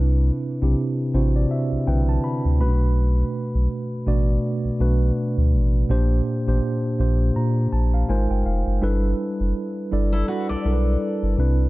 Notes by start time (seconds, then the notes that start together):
Already playing: C2 C3 C4 D4 E4 B4
0.62 B1 C3 C4 D4 E4 G4
1.14 A1 C3 C4 D4 E4 F#4 C5
1.36 D5
1.51 E5
1.72 B1
1.87 B1 D3 C4 D4 E4 B4 G5
2.09 A5
2.24 B5
2.45 D2
2.60 B1 B2 A3 C#4 F#4 B4 B5
2.67 D4
3.55 B1
4.06 A1 B2 A3 D4 F#4 D5
4.65 B1
4.79 B1 B2 A3 D4 F#4 B4
5.38 D2
5.53 A1
5.89 A#1 A#2 A#3 D4 G4 C5
6.47 A1 A#2 A#3 D4 G4 C5
6.99 A#1 A#2 A#3 D4 G4 C5
7.36 A#2 A#5
7.73 A#1 A5
7.94 F5
8.09 G#1 G#3 D#4 F4 A#4 C5 G#5
8.30 G1 G5
8.46 F1 F5
8.67 F#1
8.82 G1 G3 D4 E4 A4 B4
9.40 F#1
9.91 G1 G3 D4 E4 A4 D5
10.13 E4 A4
10.28 F#4 B4
10.49 B1 A4 D5
10.65 B1 G3 D4 E4 A4 A#4
10.73 B4
11.23 G1
11.38 C2 C3 C4 D4 E4 B4